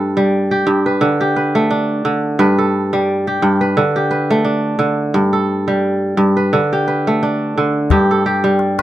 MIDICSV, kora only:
0, 0, Header, 1, 2, 480
1, 0, Start_track
1, 0, Key_signature, 1, "major"
1, 0, Tempo, 689655
1, 1666, Time_signature, 4, 2, 24, 8
1, 6139, End_track
2, 0, Start_track
2, 0, Title_t, "Kora"
2, 0, Program_c, 0, 46
2, 0, Note_on_c, 0, 43, 71
2, 0, Note_on_c, 0, 57, 72
2, 0, Note_on_c, 0, 62, 61
2, 0, Note_on_c, 0, 69, 49
2, 0, Note_on_c, 0, 71, 61
2, 117, Note_on_c, 0, 55, 66
2, 357, Note_on_c, 0, 67, 57
2, 440, Note_off_c, 0, 62, 0
2, 455, Note_off_c, 0, 43, 0
2, 464, Note_on_c, 0, 43, 72
2, 549, Note_off_c, 0, 57, 0
2, 596, Note_off_c, 0, 71, 0
2, 598, Note_on_c, 0, 71, 58
2, 703, Note_on_c, 0, 50, 74
2, 741, Note_off_c, 0, 43, 0
2, 741, Note_off_c, 0, 55, 0
2, 796, Note_off_c, 0, 69, 0
2, 836, Note_off_c, 0, 67, 0
2, 839, Note_on_c, 0, 67, 61
2, 946, Note_off_c, 0, 71, 0
2, 949, Note_on_c, 0, 71, 60
2, 1079, Note_on_c, 0, 57, 68
2, 1187, Note_on_c, 0, 62, 63
2, 1417, Note_off_c, 0, 50, 0
2, 1426, Note_on_c, 0, 50, 71
2, 1662, Note_off_c, 0, 71, 0
2, 1663, Note_on_c, 0, 43, 82
2, 1665, Note_on_c, 0, 71, 66
2, 1700, Note_off_c, 0, 50, 0
2, 1798, Note_on_c, 0, 69, 55
2, 1822, Note_off_c, 0, 67, 0
2, 2039, Note_on_c, 0, 55, 67
2, 2278, Note_on_c, 0, 67, 58
2, 2355, Note_off_c, 0, 62, 0
2, 2374, Note_off_c, 0, 43, 0
2, 2383, Note_on_c, 0, 43, 73
2, 2469, Note_off_c, 0, 57, 0
2, 2509, Note_off_c, 0, 71, 0
2, 2512, Note_on_c, 0, 71, 59
2, 2623, Note_on_c, 0, 50, 77
2, 2660, Note_off_c, 0, 43, 0
2, 2660, Note_off_c, 0, 55, 0
2, 2716, Note_off_c, 0, 69, 0
2, 2752, Note_off_c, 0, 67, 0
2, 2755, Note_on_c, 0, 67, 58
2, 2856, Note_off_c, 0, 71, 0
2, 2858, Note_on_c, 0, 71, 59
2, 2996, Note_on_c, 0, 57, 74
2, 3094, Note_on_c, 0, 62, 61
2, 3324, Note_off_c, 0, 50, 0
2, 3332, Note_on_c, 0, 50, 71
2, 3579, Note_on_c, 0, 43, 79
2, 3620, Note_off_c, 0, 50, 0
2, 3709, Note_on_c, 0, 69, 57
2, 3714, Note_off_c, 0, 71, 0
2, 3738, Note_off_c, 0, 67, 0
2, 3951, Note_on_c, 0, 55, 65
2, 4263, Note_off_c, 0, 62, 0
2, 4288, Note_off_c, 0, 43, 0
2, 4296, Note_on_c, 0, 43, 71
2, 4386, Note_off_c, 0, 57, 0
2, 4431, Note_on_c, 0, 71, 55
2, 4544, Note_on_c, 0, 50, 72
2, 4579, Note_off_c, 0, 43, 0
2, 4579, Note_off_c, 0, 55, 0
2, 4626, Note_off_c, 0, 69, 0
2, 4681, Note_on_c, 0, 67, 59
2, 4783, Note_off_c, 0, 71, 0
2, 4786, Note_on_c, 0, 71, 53
2, 4922, Note_on_c, 0, 57, 66
2, 5030, Note_on_c, 0, 62, 60
2, 5264, Note_off_c, 0, 50, 0
2, 5272, Note_on_c, 0, 50, 70
2, 5506, Note_on_c, 0, 43, 82
2, 5507, Note_off_c, 0, 67, 0
2, 5509, Note_on_c, 0, 67, 66
2, 5538, Note_off_c, 0, 50, 0
2, 5641, Note_off_c, 0, 71, 0
2, 5644, Note_on_c, 0, 69, 54
2, 5745, Note_off_c, 0, 67, 0
2, 5748, Note_on_c, 0, 67, 66
2, 5873, Note_on_c, 0, 55, 74
2, 6115, Note_on_c, 0, 71, 61
2, 6139, Note_off_c, 0, 43, 0
2, 6139, Note_off_c, 0, 55, 0
2, 6139, Note_off_c, 0, 57, 0
2, 6139, Note_off_c, 0, 62, 0
2, 6139, Note_off_c, 0, 67, 0
2, 6139, Note_off_c, 0, 69, 0
2, 6139, Note_off_c, 0, 71, 0
2, 6139, End_track
0, 0, End_of_file